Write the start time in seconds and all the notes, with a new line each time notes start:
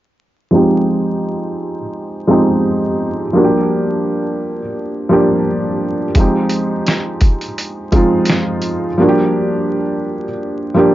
0.51 F3 G#3 C4 D#4
0.56 G4
2.27 F3 G#3 C4 D#4
2.31 G4
3.33 F3 G3 A#3 D4
3.38 F#4
3.44 G4
5.09 F3 G3 A#3 D4 G4
6.15 F3 G#3 C4, kick, closed hi-hat
6.19 D#4 G4
6.49 closed hi-hat
6.87 snare, closed hi-hat
7.21 kick, closed hi-hat
7.41 closed hi-hat
7.58 closed hi-hat
7.92 F3 G#3 C4 D#4, kick, closed hi-hat
7.96 F4
8.25 closed hi-hat
8.29 snare
8.62 closed hi-hat
8.98 F3 G3 A#3 D4
9.02 F#4
9.09 G4
10.74 F3 G3 A#3 D4
10.79 G4